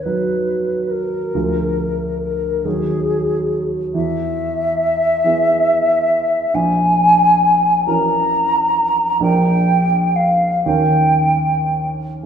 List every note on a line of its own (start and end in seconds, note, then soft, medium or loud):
0.00 1.37 D#2 soft
0.00 0.92 B4 soft
0.06 1.32 F#3 soft
0.06 1.32 D#4 soft
0.06 1.32 F#4 soft
0.90 2.22 A#4 medium
1.34 2.61 D2 soft
1.34 2.61 F3 soft
1.34 2.62 F4 soft
1.34 2.62 G#4 soft
2.22 2.66 A#4 medium
2.65 3.91 D#2 soft
2.65 3.91 F#3 soft
2.65 3.91 D#4 soft
2.65 3.91 F#4 soft
2.65 3.68 G#4 medium
3.94 5.20 E2 soft
3.94 6.56 E5 medium
5.24 6.50 E3 soft
5.24 6.50 B3 soft
5.24 6.50 G#4 soft
6.54 7.82 A#1 soft
6.54 7.85 G#5 medium
7.86 9.17 E3 soft
7.86 9.17 C#4 soft
7.86 9.17 A#4 soft
7.86 9.18 A#5 medium
9.20 10.61 A#1 soft
9.20 10.61 F3 soft
9.20 10.61 D4 soft
9.20 10.61 A#4 soft
9.20 10.17 G5 medium
10.15 10.63 F5 medium
10.64 12.20 D#2 medium
10.64 12.20 D#3 soft
10.64 12.20 C#4 soft
10.64 12.20 A#4 soft
10.64 11.87 G5 medium